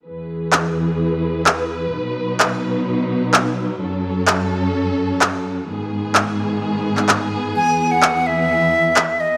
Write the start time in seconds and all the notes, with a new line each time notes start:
0.06 E2 E3 G#4 B4
0.53 clap
1.46 clap
1.93 B2 F#3 D#4
2.40 clap
3.34 clap
3.81 F#2 C#4 A4
4.27 clap
5.21 clap
5.68 G#2 D#3 B3 G#4
6.15 clap
6.97 clap
7.09 clap
7.56 E2 E3 G#5
7.91 F#5
8.03 clap
8.26 E5
8.96 clap
9.20 D#5